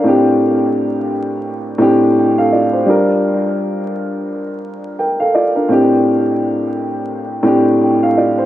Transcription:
Already playing: A#4
0.04 A2 C4 D4 G4
1.78 A2 C4 D4 G4
2.19 G5
2.38 A4 F5
2.53 F4 D5
2.73 C5
2.86 G3 D4 F4 A#4
4.99 A#4 G5
5.20 A4 F5
5.35 F4 D5
5.56 D4 A#4
5.69 A2 C4 D4 G4
7.43 A2 C4 D4 G4
7.84 G5
8.03 A4 F5
8.17 F4 D5
8.38 C5

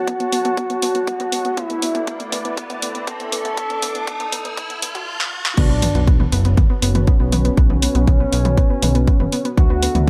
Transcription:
Already playing: F#4 C#5 F#5 A5, riser
0.07 B3, kick, closed hi-hat, mid tom
0.20 B3, closed hi-hat
0.32 B3, open hi-hat
0.45 B3, closed hi-hat, mid tom
0.57 B3, kick, closed hi-hat
0.70 B3, closed hi-hat
0.82 B3, open hi-hat, mid tom
0.95 B3, closed hi-hat
1.07 B3, kick, closed hi-hat
1.20 B3, closed hi-hat, mid tom
1.32 B3, open hi-hat
1.45 B3, closed hi-hat
1.57 A3 B3 E4 B4 D5, kick, closed hi-hat, mid tom
1.70 B3, closed hi-hat
1.82 B3, open hi-hat
1.95 B3, closed hi-hat, mid tom
2.07 B3, kick, closed hi-hat
2.20 B3, closed hi-hat
2.32 B3, open hi-hat, mid tom
2.45 B3, closed hi-hat
2.57 B3, kick, closed hi-hat
2.70 B3, closed hi-hat, mid tom
2.82 B3, open hi-hat
2.95 B3, closed hi-hat
3.07 B3 A4, kick, closed hi-hat, mid tom
3.20 B3, closed hi-hat
3.32 B3, open hi-hat
3.45 B3, closed hi-hat, mid tom
3.57 B3, kick, closed hi-hat
3.70 B3, closed hi-hat
3.82 B3, open hi-hat, mid tom
3.95 B3, closed hi-hat
4.07 B3, kick, closed hi-hat
4.20 B3, closed hi-hat, mid tom
4.32 B3, open hi-hat
4.45 B3, closed hi-hat
4.57 B3, kick, closed hi-hat, mid tom
4.70 B3, closed hi-hat
4.82 B3, open hi-hat
4.95 F#4, closed hi-hat, mid tom
5.20 snare
5.45 snare
5.57 B1 B3 D4 F#4 B4 C#5, kick, closed hi-hat, crash, sub drop
5.70 B3 B4
5.82 B3 B4, open hi-hat, mid tom
5.95 B1 B3 B4, closed hi-hat
6.07 B3 B4, kick, closed hi-hat
6.20 B3 B4, mid tom
6.32 F#1 B3 B4, open hi-hat
6.45 B3 B4, closed hi-hat
6.57 B3 B4, kick, closed hi-hat, mid tom
6.70 B3 B4
6.82 F#1 B3 B4, open hi-hat
6.95 B3 B4, closed hi-hat, mid tom
7.07 B3 C#4 B4, kick, closed hi-hat
7.20 B1 B3 B4
7.32 B3 B4, open hi-hat, mid tom
7.45 B3 B4, closed hi-hat
7.57 B1 B3 B4, kick, closed hi-hat
7.70 B3 B4, mid tom
7.82 B3 B4, open hi-hat
7.95 B1 B3 B4, closed hi-hat
8.07 B3 B4, kick, closed hi-hat, mid tom
8.20 B3 B4
8.32 B1 B3 B4, open hi-hat
8.45 B3 B4, closed hi-hat, mid tom
8.57 B3 B4, kick, closed hi-hat
8.70 B3 B4
8.82 B1 B3 B4, open hi-hat, mid tom
8.95 B3 B4, closed hi-hat
9.07 B3 B4, kick, closed hi-hat
9.20 F#1 B3 B4, mid tom
9.32 B3 B4, open hi-hat
9.45 B3 B4, closed hi-hat
9.57 D2 B3 D4 F#4 A4 B4 E5 F#5, kick, closed hi-hat, mid tom
9.70 B3 B4
9.83 B3 B4, open hi-hat
9.95 D2 B3 B4, closed hi-hat, mid tom

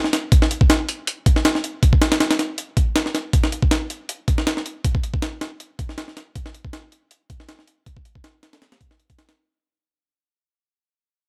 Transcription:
0.04 snare
0.13 snare, closed hi-hat
0.32 kick, closed hi-hat
0.42 snare
0.51 closed hi-hat
0.61 kick
0.70 snare, closed hi-hat
0.89 closed hi-hat
1.07 closed hi-hat
1.26 kick, closed hi-hat
1.36 snare
1.45 snare, closed hi-hat
1.55 snare
1.64 closed hi-hat
1.83 kick, closed hi-hat
1.93 kick
2.02 snare, closed hi-hat
2.12 snare, closed hi-hat
2.20 snare, closed hi-hat
2.31 snare, closed hi-hat
2.39 snare, closed hi-hat
2.58 closed hi-hat
2.77 kick, closed hi-hat
2.96 snare, closed hi-hat
3.06 snare
3.15 snare, closed hi-hat
3.33 kick, closed hi-hat
3.44 snare
3.52 closed hi-hat
3.62 kick
3.71 snare, closed hi-hat
3.90 closed hi-hat
4.09 closed hi-hat
4.28 kick, closed hi-hat
4.38 snare
4.47 snare, closed hi-hat
4.57 snare
4.66 closed hi-hat
4.84 kick, closed hi-hat
4.95 kick
5.03 closed hi-hat
5.14 kick
5.22 snare, closed hi-hat
5.41 snare, closed hi-hat
5.60 closed hi-hat
5.79 kick, closed hi-hat
5.89 snare
5.98 snare, closed hi-hat
6.08 snare
6.17 snare, closed hi-hat
6.35 kick, closed hi-hat
6.46 snare
6.54 closed hi-hat
6.65 kick
6.73 snare, closed hi-hat
6.92 closed hi-hat
7.11 closed hi-hat
7.30 kick, closed hi-hat
7.40 snare
7.49 snare, closed hi-hat
7.59 snare
7.67 closed hi-hat
7.86 kick, closed hi-hat
7.97 kick
8.05 closed hi-hat
8.15 kick
8.24 snare, closed hi-hat
8.43 snare, closed hi-hat
8.53 snare, closed hi-hat
8.62 snare, closed hi-hat
8.72 snare, closed hi-hat
8.81 kick, closed hi-hat
8.91 snare
9.00 closed hi-hat
9.10 kick, closed hi-hat
9.19 snare, closed hi-hat
9.29 snare, closed hi-hat

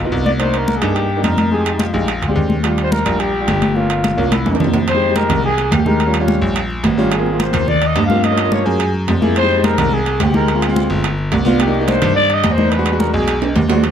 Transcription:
0.00 B1
0.04 B3 D#4 F4
0.12 C2, high conga
0.25 D5, high conga
0.39 A#3 D4 D#4 C5, high conga, high timbale
0.54 A#4, high conga, high timbale
0.68 high conga
0.77 G#4
0.81 G2 A#3 D4 D#4, high timbale
0.95 G4, high conga, high timbale
1.10 high conga
1.16 A#3 D4 D#4
1.24 F2 A#4, high conga, high timbale
1.37 high conga, high timbale
1.51 G#3 D#4 G4 G#4, high conga
1.66 high conga, high timbale
1.73 D#4
1.79 F4, high conga, high timbale
1.93 A#1 G#3 D#4 G4, high conga
2.08 high conga, high timbale
2.22 D2, high conga, high timbale
2.28 G#3 C4 D4 G4
2.36 D#2, high conga
2.50 high conga
2.63 G3 D4 F4, high conga, high timbale
2.78 high conga, high timbale
2.83 C5
2.92 A#4, high conga
3.05 A#1 G3 D4 F4, high timbale
3.20 G4, high conga, high timbale
3.34 high conga
3.40 G3 D4 F4
3.48 G1, high conga, high timbale
3.62 high conga, high timbale
3.75 A#3 C#4 F4, high conga
3.90 high timbale
4.04 high conga, high timbale
4.17 C2 A#3 C#4 F4, high conga
4.32 E4, high conga, high timbale
4.46 E2, high conga, high timbale
4.52 A#3 D4 E4, high timbale
4.60 F2, low conga
4.64 low timbale
4.74 low conga, low timbale
4.88 C5, high conga, high timbale
4.94 G#3 D#4 G4
5.02 high conga
5.08 G#3 D#4 G4
5.16 A#4, high conga, high timbale, low timbale
5.30 C2, high conga, low conga, high timbale
5.44 G#4, high conga
5.58 high conga, high timbale
5.71 D#2 G4, high conga, high timbale, low timbale
5.85 G#3 D#4 G4 A#4, high conga
6.00 high conga, high timbale
6.06 G3 C#4 F4
6.14 high conga, high timbale
6.20 G3 C#4 F4
6.28 high conga, low timbale
6.42 A#1, high conga
6.56 high conga, high timbale
6.70 high conga
6.84 G#1, high conga, high timbale, low timbale
6.97 G3 C#4 F4
7.11 G#4, high conga, high timbale
7.18 A#3 C4 F4
7.26 high conga
7.33 A#3 C4 F4
7.40 C5, high conga, high timbale, low timbale
7.53 D#2, high conga, low conga, high timbale
7.68 D5, high conga, low conga
7.82 high conga, high timbale
7.86 D#5
7.96 G2, high conga, high timbale, low timbale
8.05 A#3 F5
8.10 C4 F4, high conga
8.24 D#5, high conga, high timbale
8.31 A#3 C#4 F4
8.38 high conga, high timbale
8.44 A#3 C#4 F4
8.52 C#5, high conga, low timbale
8.66 F#2 G#4, high conga
8.80 high conga, high timbale
8.94 high conga
9.08 F2, high conga, high timbale, low timbale
9.21 A#3 E4 G#4, high conga
9.36 C5, high conga, high timbale
9.42 G#3 D#4 G4
9.50 high conga
9.56 G#3 D#4 G4
9.64 A#4, high conga, high timbale, low timbale
9.78 C2, high conga, low conga, high timbale
9.92 G#4, high conga
10.06 high conga, high timbale
10.20 D2 G4, high conga, high timbale, low timbale
10.33 G#3 D#4 G4 A#4, high conga
10.48 high conga, high timbale
10.54 G#3 C4 F4
10.62 high conga, high timbale
10.68 G#3 C4 F4
10.76 high conga, low timbale
10.90 G1, high conga
11.04 high conga, high timbale
11.18 high conga
11.32 C2, high conga, high timbale, low timbale
11.45 B3 D4 F4, high conga
11.60 G4, high conga, high timbale
11.66 A#3 D4 D#4
11.74 high conga
11.80 A#3 D4 D#4
11.88 C5, high conga, high timbale, low timbale
12.02 G2, high conga, low conga, high timbale
12.15 D5, high conga
12.30 D#5, high conga, high timbale
12.43 E2, high conga, high timbale, low timbale
12.52 C5
12.56 A#3 D4 D#4, high conga
12.71 B4, high conga, high timbale
12.77 G#3 D4 F#4
12.86 high conga, high timbale
12.91 G#3 D4 F#4
12.99 A#4, high conga, low timbale
13.14 B1 G#4, high conga
13.28 high conga, high timbale
13.42 high conga, high timbale
13.56 D#2, high conga, low timbale
13.68 G#3 D4 F#4, low timbale
13.82 F3 G3 D4, high conga, high timbale

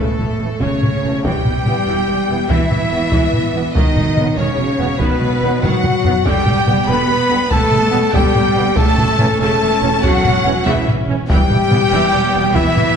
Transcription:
Already playing: A3 A4
0.00 A2 C#3 A3 A4
0.19 E1 E3, taiko low-mid
0.39 E1 C#3 E3 A3
0.60 E1 C#3 C#4 C#5, taiko
0.82 taiko low-mid
1.04 E1 C#3 E3 A3
1.24 E1 E3 G3 B3 G4 G5, taiko
1.45 E1 E3, taiko low-mid
1.67 E1 E3 B3, taiko low-mid
1.87 E1 E3
2.08 E1 E3
2.28 E1 E3 B3
2.49 E1 E3 E4 E5, taiko
2.70 E1 E3, taiko low-mid
2.91 E1 E3 B3
3.12 E1 E3, taiko
3.33 taiko low-mid
3.54 E1 E3 B3
3.73 E1 D#3 D#4 D#5, taiko
3.96 E1 F#3, taiko low-mid
4.17 E1 D#3 F#3 B3, taiko low-mid
4.36 E1 C#3 D#3 C#4 C#5
4.59 E1 F#3
4.79 E1 D#3 F#3 B3
4.99 E1 B2 D#3 B3 B4, taiko
5.21 E1 F#3, taiko low-mid
5.42 E1 D#3 F#3 B3
5.61 E1 D#3 F#3 F#4 F#5, taiko low-mid
5.66 F#4
5.84 taiko low-mid
6.05 E1 D#3 F#3 B3, taiko low
6.24 E1 D3 G3 B3 G4 G5, taiko
6.46 E1 G3, taiko low-mid
6.67 E1 D3 G3 B3, taiko low-mid
6.87 E1 D3 B3 B4 B5
7.07 E1 G3
7.29 E1 D3 G3 B3
7.49 E1 D3 A3 A4 A5, taiko
7.72 E1 G3, taiko low-mid
7.91 E1 D3 G3 B3
8.13 E1 D3 G3 G4 G5, taiko
8.35 taiko low-mid
8.56 E1 D3 G3 B3
8.76 E1 C#3 A3 C#4 A4 A5, taiko
8.98 E1 E3, taiko low-mid
9.19 E1 C#3 E3 C#4, taiko low-mid
9.39 E1 C#3 A3 A4 A5
9.61 E1 E3
9.81 E1 C#3 E3 C#4
10.02 E1 C#3 F#3 F#4 F#5, taiko
10.25 E1 E3, taiko low-mid
10.44 E1 C#3 E3 C#4
10.65 E1 C#3 E3 E4 E5, taiko
10.88 taiko low-mid
11.08 E1 C#3 E3 C#4
11.28 E1 E3 G3 B3 G4 G5, taiko
11.50 E1 E3, taiko low-mid
11.71 E1 E3 B3, taiko low-mid
11.92 E1 E3
12.13 E1 E3
12.33 E1 E3 B3
12.54 E1 E3 E4 E5, taiko
12.76 E1 E3, taiko low-mid

